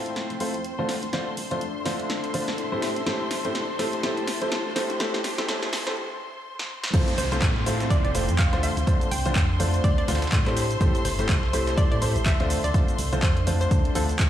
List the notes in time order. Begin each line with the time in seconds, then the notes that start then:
Already playing: A2 A3 C4 E4 F4 C5 G5 C6, riser
0.06 closed hi-hat
0.16 snare, closed hi-hat
0.30 F1, closed hi-hat
0.40 A3 C4 E4 F4 C5, open hi-hat
0.54 F2, closed hi-hat
0.65 closed hi-hat
0.79 D2 D3 A3 C4 D4 F4 C5
0.89 D4, snare, open hi-hat
1.00 D2 E5, closed hi-hat
1.13 D3 A3 C4 D4 F4 A4 C5, snare, closed hi-hat
1.37 C2, open hi-hat
1.51 D3 A3 C4 D4 F4 C5, closed hi-hat
1.61 F2, closed hi-hat
1.85 D3 A3 C4 D4 F4 C5, snare, open hi-hat
2.00 closed hi-hat
2.10 D2, snare, closed hi-hat
2.24 closed hi-hat
2.34 D2 D3 A3 C4 D4 F4 C5, open hi-hat
2.48 snare, closed hi-hat
2.58 A2, closed hi-hat
2.72 A2 A3 C4 E4 G4 C5
2.82 snare, open hi-hat
2.96 closed hi-hat
3.06 A1 A2 A3 C4 E4 G4 C5 A5, snare, closed hi-hat
3.31 G1, snare, open hi-hat
3.45 A2 A3 C4 E4 G4 C5, closed hi-hat
3.55 C2, snare, closed hi-hat
3.79 A2 A3 C4 E4 G4 C5, snare, open hi-hat
3.93 closed hi-hat
4.03 A2 A3 C4 E4 G4 C5, snare, closed hi-hat
4.17 A2, closed hi-hat
4.28 snare, open hi-hat
4.41 A1 A2 A3 C4 E4 G4 C5, closed hi-hat
4.52 snare, closed hi-hat
4.66 D2
4.76 A2 A3 C4 D4 E4 G4 C5, snare, open hi-hat
4.90 D2, closed hi-hat
5.00 A2 A3 C4 E4 G4 C5, snare, closed hi-hat
5.14 snare
5.24 C2, snare, open hi-hat
5.38 A2 A3 C4 E4 G4 C5, snare, closed hi-hat
5.48 F2 A2 A3 C4 E4 G4 C5, snare, closed hi-hat
5.63 snare, closed hi-hat
5.73 snare, open hi-hat
5.87 A2 A3 C4 E4 G4 C5, snare, closed hi-hat
6.59 snare
6.84 snare
6.94 F2 A3 C4 E4 F4 C5 C6, kick, closed hi-hat, crash, downlifter, shaker
7.08 closed hi-hat, shaker
7.18 C2 C5, snare, open hi-hat, shaker
7.32 A3 C4 E4 F4 C5, closed hi-hat, shaker
7.36 G5
7.42 A2, kick, snare, clap, closed hi-hat, shaker
7.56 snare
7.66 A3 C4 E4 F4 C5, closed hi-hat, open hi-hat, shaker
7.80 snare, closed hi-hat, shaker
7.90 D5, kick, closed hi-hat, shaker
8.04 F1 D5, closed hi-hat
8.15 A3 C4 E4 F4 C5, closed hi-hat, open hi-hat, shaker
8.29 F2, closed hi-hat, shaker
8.39 F5, kick, snare, clap, closed hi-hat, shaker
8.53 D2 D3 A3 C4 D4 F4 C5, snare, closed hi-hat
8.63 D4 F5, closed hi-hat, open hi-hat, shaker
8.75 D2 A4, closed hi-hat, shaker
8.87 D3 A3 C4 D4 F4 C5, kick, closed hi-hat, shaker
9.01 closed hi-hat, shaker
9.11 C2 E5 G5, closed hi-hat, open hi-hat, shaker
9.25 D3 A3 C4 D4 F4 C5, closed hi-hat, shaker
9.36 F2, kick, snare, clap, closed hi-hat, shaker
9.60 D3 A3 C4 D4 F4 C5, closed hi-hat, open hi-hat, shaker
9.74 closed hi-hat, shaker
9.84 D2 D5, kick, closed hi-hat, shaker
9.98 D5, closed hi-hat
10.08 D2 D3 A3 C4 D4 F4 C5, snare, closed hi-hat, open hi-hat, shaker
10.15 snare, closed hi-hat
10.22 snare, closed hi-hat, shaker
10.27 snare, closed hi-hat
10.32 A2, kick, snare, clap, closed hi-hat, shaker
10.46 A2 A3 C4 E4 G4 C5, snare, clap, closed hi-hat
10.57 snare, closed hi-hat, open hi-hat, shaker
10.71 closed hi-hat, shaker
10.81 A1 A2 A3 C4 E4 G4 C5, kick, closed hi-hat, shaker
10.95 closed hi-hat, shaker
11.00 A5
11.05 G1 C5, snare, open hi-hat, shaker
11.19 A2 A3 C4 E4 G4 C5, closed hi-hat, shaker
11.29 C2, kick, snare, clap, closed hi-hat, shaker
11.43 snare
11.53 A2 A3 C4 E4 G4 C5, closed hi-hat, open hi-hat, shaker
11.67 snare, closed hi-hat, shaker
11.77 D5, kick, closed hi-hat, shaker
11.91 A2 D5, closed hi-hat
12.02 A2 A3 C4 E4 G4 C5, closed hi-hat, open hi-hat, shaker
12.16 A1, closed hi-hat, shaker
12.26 E5, kick, snare, clap, closed hi-hat, shaker
12.40 D2 D3 A3 C4 D4 F4 C5, snare, closed hi-hat
12.50 D4, closed hi-hat, open hi-hat, shaker
12.64 D2 D5, closed hi-hat, shaker
12.74 D3 A3 C4 D4 F4 C5, kick, closed hi-hat, shaker
12.88 closed hi-hat, shaker
12.98 C2, closed hi-hat, open hi-hat, shaker
13.13 D3 A3 C4 D4 F4 C5, closed hi-hat, shaker
13.23 F2 C5, kick, snare, clap, closed hi-hat, shaker
13.37 closed hi-hat
13.47 D3 A3 C4 D4 F4 C5, closed hi-hat, open hi-hat, shaker
13.61 C5, closed hi-hat, shaker
13.71 D2, kick, closed hi-hat, shaker
13.85 closed hi-hat
13.95 D2 D3 A3 C4 D4 F4 A4 C5, closed hi-hat, open hi-hat, shaker
14.09 closed hi-hat, shaker
14.19 kick, snare, clap, closed hi-hat, shaker